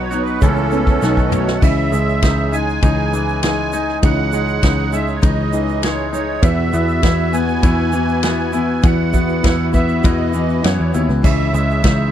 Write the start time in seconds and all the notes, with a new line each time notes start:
Already playing: B1 F#3 B3 D#4 F#4 B4
0.02 C#5
0.10 B2 F#3 B3 D#4 F#4, closed hi-hat, shaker
0.21 B4
0.27 shaker
0.41 C#2 C#3 E3 A3 B3 C#4 E4 A4 B4, kick, closed hi-hat, shaker
0.56 shaker
0.70 A3 B3 C#4 E4 A4 B4, closed hi-hat, shaker
0.87 kick, shaker
1.01 B1 B2 D#3 F#3 A3 B3 D#4 F#4 A4 B4, snare, shaker
1.17 kick, shaker
1.26 D#5
1.31 A3 D#4 F#4 C#5, mid tom, shaker
1.48 snare, shaker
1.55 F#5
1.61 C#2 C#3 E3 G#3 C#4 E4 G#4 C#5 D#5 E5, kick, crash, shaker
1.90 C#2 G#3 E4 G#4 C#5 D#6, shaker
2.09 shaker
2.21 C#2 E3 G#3 D#4, kick, snare, ride bell, shaker
2.53 G#3 D#4 G#5, shaker
2.69 shaker
2.82 C#2 C#3 E3 G#3 D#4, kick, ride bell, shaker
3.13 E3 G#3 D#4, shaker
3.29 shaker
3.42 E3 G#3 D#4 G#5, snare, ride bell, shaker
3.73 G#3 D#4, shaker
3.89 snare
4.02 C#2 C#3 E3 G#3 D#4 E4 G#4 C#5 D#5 F#5, kick, ride bell, shaker
4.32 G#3 D#4 G#4 C#5 D#5, shaker
4.48 shaker
4.62 C#2 E3 G#3 D#4, kick, snare, ride bell, shaker
4.93 G#3 D#4 E5, shaker
5.07 shaker
5.14 C#5
5.21 C#2 C#3 E3 G#3 D#4 D#5, kick, ride bell, shaker
5.53 E3 G#3 D#4, shaker
5.69 shaker
5.82 E3 G#3 D#4 C#5, snare, ride bell, shaker
6.13 G#3 D#4 C#5, shaker
6.42 E2 B2 E3 B3 E4 F#4 B4 E5, kick, ride bell, shaker
6.71 E2 E3 B3 E4 F#4 B4 E5, shaker
6.89 shaker
7.02 E2 E3 B3 E4 F#4, kick, snare, ride bell, shaker
7.33 E3 B3 E4 F#4 G#5, shaker
7.48 shaker
7.62 E2 B2 E3 B3 E4 F#4, kick, ride bell, shaker
7.92 E3 B3 E4 F#4, shaker
8.09 shaker
8.23 E3 B3 E4 F#4 G#5, snare, ride bell, shaker
8.52 E3 B3 E4 F#4, shaker
8.82 E2 B2 E3 B3 E4 F#4 B4 E5 F#5, kick, ride bell, shaker
9.12 E3 B3 E4 F#4 B4 E5, kick, shaker
9.29 shaker
9.43 E2 E3 B3 E4 F#4, kick, snare, ride bell, shaker
9.72 E3 B3 E4 F#4 E5, kick, shaker
9.89 shaker
10.03 E2 B2 E3 B3 E4 F#4 D#5, kick, ride bell, shaker
10.32 E3 B3 E4 F#4, shaker
10.49 shaker
10.62 F#2 E3 B3 E4 F#4 C#5, snare, ride bell, shaker
10.80 E2
10.92 D#2 E3 B3 E4 F#4 C#5, shaker
11.09 C#2, snare, shaker
11.22 C#2 C#3 E3 G#3 C#4 E4 G#4 C#5 D#5 E5, kick, crash, shaker
11.52 C#2 G#3 E4 G#4 C#5 D#6, shaker
11.70 shaker
11.82 C#2 E3 G#3 D#4, kick, snare, ride bell, shaker